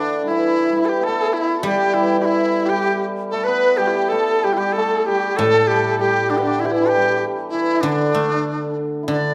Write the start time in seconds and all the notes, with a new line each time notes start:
Already playing: D3 G3 A3 D4 G4 A4 D5
0.23 G3 E4
0.28 E3 E4
0.70 G3
0.74 E3 E4
0.85 G4 A4
1.00 B3 A4
1.08 A3
1.33 E4
1.57 A4
1.63 G3 G4
1.94 E3 E4
2.20 E4 G4
2.25 E3 E4
2.66 G4
2.70 G3
3.31 A3 A4
3.44 B4
3.48 B3
3.77 G3 G4
3.89 E4
3.95 G4
4.09 A3 A4
4.44 G3 G4
4.53 G3 E4
4.58 G4
4.73 A4
4.78 A3
5.00 A4
5.06 G3 G4
5.37 A2 A4
5.41 A3
5.67 G3 G4
5.99 G3 G4
6.30 D3 D4
6.38 B4
6.43 D3 D4
6.60 E4
6.64 E3 G4
6.72 E4
6.76 E3
6.85 G4 A4
6.90 G4
6.95 G3
7.50 E4
7.54 E3
7.81 D3 D4
7.86 D3
8.14 A3
9.03 E4
9.08 D3 D4
9.12 D5